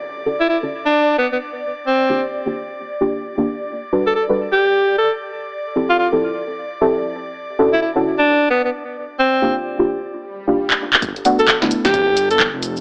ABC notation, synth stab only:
X:1
M:4/4
L:1/16
Q:"Swing 16ths" 1/4=131
K:D
V:1 name="Synth stab"
z2 [D,CEFA]2 z [D,CEFA]2 z8 z | z2 [_E,_B,D=FG]3 [E,B,DFG]2 z3 [E,B,DFG]2 z [E,B,DFG] z2 | z2 [G,DFAB]2 z [G,DFAB]2 z8 z | z2 [=F,=CEGA]3 [F,CEGA]2 z4 [F,CEGA]3 z2 |
z2 [D,CEFA]2 z [D,CEFA]2 z8 z | z2 [_E,_B,D=FG]3 [E,B,DFG]2 z4 [E,B,DFG]4- [E,B,DFG] | z2 [A,B,DF]2 z [A,B,DE]2 z8 z |]